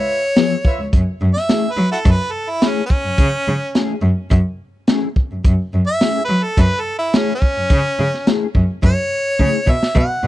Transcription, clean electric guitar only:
0.36 0.54 F3 medium
0.36 0.54 B3 medium
0.36 0.55 E4 medium
0.36 0.55 G#4 medium
1.49 1.67 A3 medium
1.49 1.67 C#4 medium
1.49 1.67 E4 medium
1.49 1.68 G#4 medium
2.62 2.80 A3 medium
2.62 2.80 C#4 medium
2.62 2.80 E4 medium
2.62 2.81 G#4 medium
3.75 3.93 A3 medium
3.75 3.93 C#4 medium
3.75 3.93 E4 medium
3.75 3.94 G#4 loud
4.88 5.06 A3 medium
4.88 5.06 C#4 medium
4.88 5.06 E4 medium
4.88 5.07 G#4 medium
6.02 6.19 A3 medium
6.02 6.19 C#4 medium
6.02 6.19 E4 medium
6.02 6.20 G#4 medium
7.14 7.31 A3 medium
7.14 7.32 C#4 medium
7.14 7.32 E4 medium
7.14 7.32 G#4 medium
8.27 8.44 A3 medium
8.27 8.44 C#4 medium
8.27 8.45 E4 medium
8.27 8.45 G#4 medium
9.39 9.57 A3 medium
9.39 9.57 C#4 medium
9.39 9.57 E4 medium
9.39 9.58 G#4 medium

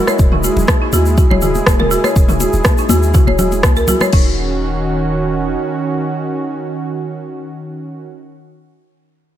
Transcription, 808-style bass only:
0.19 0.50 D#1 loud
0.57 0.64 D#1 loud
0.93 1.23 D#2 medium
1.31 1.60 D#1 medium
1.67 1.97 D#1 medium
2.16 2.46 D#1 loud
2.54 2.61 D#1 loud
2.90 3.20 D#2 loud
3.27 3.65 D#1 medium
3.64 3.94 C#2 medium
4.13 5.56 D#1 loud

